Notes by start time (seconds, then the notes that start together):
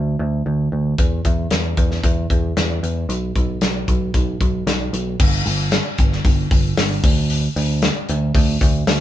Already playing: D2
0.19 D2
0.46 D2
0.72 D2
0.98 E2, kick, closed hi-hat
1.25 E2, kick, closed hi-hat
1.51 E2, snare, closed hi-hat
1.77 E2, kick, closed hi-hat
1.91 snare
2.04 E2, kick, closed hi-hat
2.30 E2, kick, closed hi-hat
2.57 E2, snare, closed hi-hat
2.83 E2, closed hi-hat
3.09 B1, closed hi-hat
3.36 B1, kick, closed hi-hat
3.61 B1, snare, closed hi-hat
3.88 B1, kick, closed hi-hat
4.14 B1, kick, closed hi-hat
4.41 B1, kick, closed hi-hat
4.67 B1, snare, closed hi-hat
4.93 B1, closed hi-hat
5.20 G1, kick, crash
5.46 G1, hi-hat pedal, open hi-hat
5.72 snare, hi-hat pedal, open hi-hat
5.98 G1, kick, hi-hat pedal, open hi-hat
6.12 snare
6.25 G1, kick, hi-hat pedal, open hi-hat
6.51 G1, kick, hi-hat pedal, open hi-hat
6.77 G1, snare, hi-hat pedal, open hi-hat
7.04 D2, kick, hi-hat pedal, open hi-hat
7.30 hi-hat pedal, open hi-hat
7.56 D2, hi-hat pedal, open hi-hat
7.82 snare, hi-hat pedal, open hi-hat
8.09 D2, hi-hat pedal, open hi-hat
8.35 D2, kick, hi-hat pedal, open hi-hat
8.61 D2, kick, hi-hat pedal, open hi-hat
8.87 D2, snare, hi-hat pedal, open hi-hat